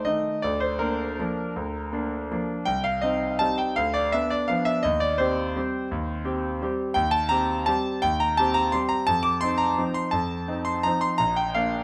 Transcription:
0.05 0.40 D#3 soft
0.05 0.40 A3 soft
0.05 0.40 D#4 soft
0.05 0.43 D#5 medium
0.42 0.80 D2 soft
0.42 0.61 D5 medium
0.60 0.80 C5 medium
0.79 1.15 A#3 soft
0.79 1.15 D4 soft
0.79 2.48 A#4 medium
1.20 1.52 F3 soft
1.20 1.52 A#3 soft
1.20 1.52 D4 soft
1.56 1.91 D2 soft
1.93 2.27 A#3 soft
1.93 2.27 D4 soft
2.32 2.64 F3 soft
2.32 2.64 A#3 soft
2.32 2.64 D4 soft
2.65 3.02 C2 soft
2.65 2.84 G5 medium
2.84 3.02 F5 medium
3.02 3.37 C4 soft
3.02 3.37 D#4 soft
3.02 3.40 D#5 medium
3.39 3.73 G3 soft
3.39 3.73 C4 soft
3.39 3.73 D#4 soft
3.39 3.58 A5 medium
3.58 3.76 G5 medium
3.76 4.12 D2 medium
3.76 3.94 F5 medium
3.94 4.12 D5 medium
4.12 4.46 B3 soft
4.12 4.47 D4 soft
4.12 4.31 E5 medium
4.30 4.49 D5 medium
4.48 4.81 F3 soft
4.48 4.81 B3 soft
4.48 4.81 D4 soft
4.48 4.66 F5 medium
4.65 4.83 E5 medium
4.83 5.18 D#2 medium
4.83 5.01 D#5 medium
5.00 5.19 D5 medium
5.18 5.52 C4 soft
5.18 5.52 G4 soft
5.18 6.78 C5 medium
5.56 5.87 G3 soft
5.56 5.87 C4 soft
5.56 5.88 G4 soft
5.91 6.24 D#2 medium
6.25 6.57 C4 soft
6.25 6.58 G4 soft
6.62 6.93 G3 soft
6.62 6.93 C4 soft
6.62 6.93 G4 soft
6.94 7.29 D#2 medium
6.94 7.12 G5 medium
7.11 7.29 A5 medium
7.29 7.63 C4 soft
7.29 7.64 G4 soft
7.29 7.66 A#5 loud
7.66 7.99 G3 soft
7.66 7.99 C4 soft
7.66 8.00 G4 soft
7.66 8.02 A5 medium
8.02 8.37 D#2 medium
8.02 8.20 G5 medium
8.20 8.37 A#5 medium
8.37 8.70 C4 soft
8.37 8.70 G4 soft
8.37 8.55 A5 medium
8.54 8.72 A#5 medium
8.72 9.05 G3 soft
8.72 9.05 C4 soft
8.72 9.05 G4 soft
8.72 8.90 C6 medium
8.89 9.07 A#5 medium
9.07 9.41 F2 medium
9.07 9.24 A5 loud
9.23 9.41 D6 medium
9.41 9.75 C4 soft
9.41 9.75 D#4 soft
9.41 9.59 C6 medium
9.58 9.95 A#5 medium
9.78 10.10 F3 soft
9.78 10.10 C4 soft
9.78 10.10 D#4 soft
9.94 10.13 C6 medium
10.11 10.47 F2 medium
10.11 10.65 A5 medium
10.48 10.80 C4 soft
10.48 10.80 D#4 soft
10.65 10.83 C6 medium
10.83 11.17 F3 soft
10.83 11.17 C4 soft
10.83 11.17 D#4 soft
10.83 11.02 A#5 medium
11.01 11.19 C6 medium
11.18 11.54 A#1 medium
11.18 11.37 A#5 medium
11.36 11.55 G5 medium
11.54 11.84 A#3 soft
11.54 11.84 D4 soft
11.54 11.84 F5 medium

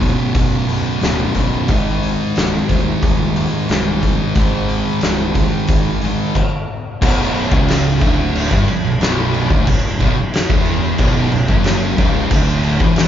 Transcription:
0.00 0.12 D1 loud
0.00 0.66 B1 medium
0.00 1.00 B1 medium
0.00 0.67 F#2 medium
0.00 1.00 F#2 medium
0.00 0.66 B2 medium
0.00 0.99 B2 medium
0.00 kick medium
0.00 open hi-hat medium
0.35 0.79 B0 medium
0.35 kick loud
0.35 open hi-hat medium
0.67 1.01 B1 medium
0.67 1.01 F#2 medium
0.67 1.00 B2 medium
0.67 open hi-hat medium
1.01 1.24 D1 loud
1.01 1.67 B1 medium
1.01 1.68 F#2 medium
1.01 1.68 B2 medium
1.01 snare loud
1.01 open hi-hat medium
1.35 1.58 B0 medium
1.35 kick medium
1.35 open hi-hat medium
1.68 2.13 G#1 medium
1.68 3.33 G#2 medium
1.68 3.35 D#3 medium
1.68 3.35 G#3 medium
1.68 kick loud
1.68 open hi-hat medium
2.03 open hi-hat medium
2.36 2.58 C1 medium
2.36 snare loud
2.36 open hi-hat medium
2.68 2.91 D#1 medium
2.68 3.67 G#2 medium
2.68 3.68 D#3 medium
2.68 3.67 G#3 medium
2.68 kick medium
2.68 open hi-hat medium
3.03 3.47 D#1 medium
3.03 kick loud
3.03 open hi-hat medium
3.36 3.68 G#2 medium
3.36 3.68 D#3 medium
3.36 3.68 G#3 medium
3.36 open hi-hat medium
3.69 4.13 C1 loud
3.69 4.34 G#2 medium
3.69 4.35 D#3 medium
3.69 4.36 G#3 medium
3.69 snare loud
3.69 open hi-hat medium
4.03 kick medium
4.03 open hi-hat medium
4.35 4.80 G#1 loud
4.35 6.00 G#2 medium
4.35 6.02 D#3 loud
4.35 6.02 G#3 loud
4.35 kick loud
4.35 open hi-hat medium
4.69 open hi-hat medium
5.01 5.46 C1 loud
5.01 snare loud
5.01 open hi-hat medium
5.35 6.35 G#2 medium
5.35 6.34 D#3 medium
5.35 6.33 G#3 medium
5.35 kick medium
5.35 open hi-hat medium
5.68 6.13 G#1 medium
5.68 kick loud
5.68 open hi-hat medium
6.02 6.35 D#3 medium
6.02 6.34 G#3 medium
6.02 open hi-hat medium
6.06 6.36 G#2 medium
6.35 kick medium
6.35 crash medium
7.02 7.49 B0 medium
7.02 7.51 B1 loud
7.02 7.51 B2 loud
7.02 kick loud
7.02 crash loud
7.35 crash medium
7.52 7.98 C#1 loud
7.52 8.01 C#2 medium
7.52 8.01 C#3 loud
7.52 kick loud
7.68 snare loud
7.68 crash loud
8.01 8.48 D1 loud
8.01 8.50 D2 loud
8.01 8.51 D3 loud
8.01 kick loud
8.01 crash medium
8.35 crash loud
8.51 8.67 G1 loud
8.51 8.67 G2 loud
8.51 8.67 G3 loud
8.51 kick loud
8.68 muted fingered electric bass stroke soft
8.68 muted distorted electric guitar stroke medium
8.68 crash medium
8.84 8.99 B0 medium
8.84 8.99 B1 medium
9.00 9.47 B0 loud
9.00 9.49 B1 loud
9.00 9.50 B2 medium
9.00 snare loud
9.00 crash medium
9.34 crash medium
9.50 9.66 D1 loud
9.50 9.67 D2 medium
9.50 9.67 D3 loud
9.50 kick loud
9.67 9.98 B0 medium
9.67 9.94 B1 medium
9.67 kick loud
9.67 crash medium
10.00 10.15 B0 loud
10.00 10.16 B1 medium
10.00 10.16 B2 loud
10.00 kick loud
10.00 crash medium
10.16 10.47 B0 medium
10.16 10.44 B1 medium
10.34 snare loud
10.34 crash medium
10.50 10.96 E1 loud
10.50 10.98 E2 loud
10.50 10.99 E3 loud
10.50 kick loud
10.65 crash medium
10.98 11.30 B0 loud
10.98 11.31 B1 loud
10.98 11.32 B2 loud
10.98 kick loud
10.98 crash loud
11.31 11.47 B0 loud
11.31 11.49 B1 medium
11.31 crash medium
11.48 11.95 F#1 loud
11.48 11.98 F#2 medium
11.48 11.98 F#3 loud
11.48 kick loud
11.64 snare loud
11.64 crash medium
11.98 12.29 C#1 loud
11.98 12.30 C#2 loud
11.98 12.30 C#3 loud
11.98 kick loud
11.98 crash medium
12.31 12.77 D1 medium
12.31 12.80 D2 loud
12.31 12.81 D3 loud
12.31 kick loud
12.31 crash loud
12.63 crash medium
12.80 13.08 E1 medium
12.80 13.08 E2 medium
12.80 13.08 E3 loud
12.80 kick loud
12.96 snare loud
12.96 crash loud

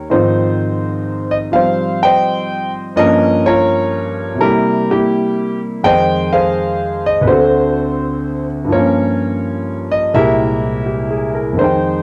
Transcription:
0.00 0.10 G3 soft
0.00 0.11 A#3 soft
0.00 0.10 C#4 medium
0.10 2.97 G#2 soft
0.10 2.97 D#3 soft
0.10 1.50 F3 soft
0.10 1.53 C4 medium
0.10 1.51 D#4 medium
0.10 1.51 F4 medium
0.10 1.35 C5 medium
1.31 1.36 D#5 medium
1.52 2.95 F3 soft
1.52 2.97 G3 soft
1.52 2.97 C4 soft
1.52 2.04 C5 medium
1.52 1.99 F5 medium
2.03 2.94 C5 medium
2.03 2.94 D#5 medium
2.03 2.70 G5 loud
2.96 4.40 G2 medium
2.96 4.40 F3 medium
2.96 4.40 A#3 medium
2.96 4.41 C#4 medium
2.96 3.46 A#4 medium
2.96 3.47 D#5 loud
3.46 4.37 F4 medium
3.46 4.37 A#4 medium
3.46 4.43 C#5 loud
4.35 5.81 C3 soft
4.35 5.83 G3 soft
4.41 4.90 A#3 soft
4.41 4.45 E4 medium
4.41 4.90 G4 medium
4.41 4.91 A#4 medium
4.46 4.90 E4 soft
4.91 5.81 A#3 medium
4.91 5.81 E4 medium
4.91 5.58 G4 medium
5.83 7.27 F2 medium
5.83 7.27 D#3 soft
5.83 7.28 G#3 soft
5.83 6.32 C5 medium
5.83 7.05 D#5 medium
5.83 6.29 G5 loud
6.33 7.24 G#4 medium
6.33 7.24 C5 medium
6.33 7.00 F5 medium
7.06 7.22 D#5 medium
7.21 8.68 D2 medium
7.21 8.70 D3 medium
7.21 7.27 B4 medium
7.27 8.72 C4 soft
7.27 7.31 F#4 medium
7.27 8.67 A4 soft
7.27 8.44 C5 medium
7.32 8.73 F#4 medium
8.65 10.11 G2 soft
8.69 10.13 F3 soft
8.69 10.15 A#3 soft
8.69 10.11 F4 medium
8.69 10.11 A#4 medium
8.69 9.88 C#5 medium
8.76 10.17 C#4 medium
9.92 10.13 D#5 medium
10.14 11.58 C2 medium
10.14 11.58 A#2 soft
10.14 11.58 G#3 soft
10.14 11.58 E4 medium
10.14 10.85 G4 medium
10.14 11.33 A#4 medium
10.14 11.31 E5 medium
10.86 11.32 G4 soft
11.11 11.48 G#4 soft
11.35 11.72 A#4 soft
11.53 12.03 F2 soft
11.53 12.03 D#3 soft
11.59 12.03 G#3 soft
11.59 12.03 D#4 medium
11.59 12.03 C5 medium
11.64 12.03 G5 medium

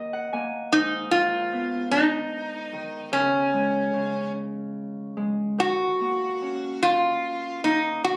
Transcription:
0.00 0.78 D#3 soft
0.00 0.33 A#3 soft
0.00 1.72 D#5 medium
0.13 1.74 F#5 medium
0.33 1.59 A#3 soft
0.33 1.83 G#5 medium
0.72 3.18 G#2 medium
0.72 1.10 D#4 medium
1.11 2.72 D#3 soft
1.11 1.88 F4 medium
1.53 4.64 B3 soft
1.91 3.12 D#4 medium
2.73 3.18 D#3 soft
3.12 3.92 C#3 medium
3.12 4.31 C#4 medium
3.53 5.16 G#3 soft
3.94 5.65 C#3 soft
5.17 5.65 G#3 soft
5.58 8.10 D#3 medium
5.58 6.79 F#4 medium
6.01 7.64 A#3 soft
6.42 8.17 C#4 soft
6.83 7.60 F4 medium
7.64 8.12 A#3 medium
7.64 8.04 D#4 medium
8.04 8.17 B2 medium
8.04 8.17 F#4 medium

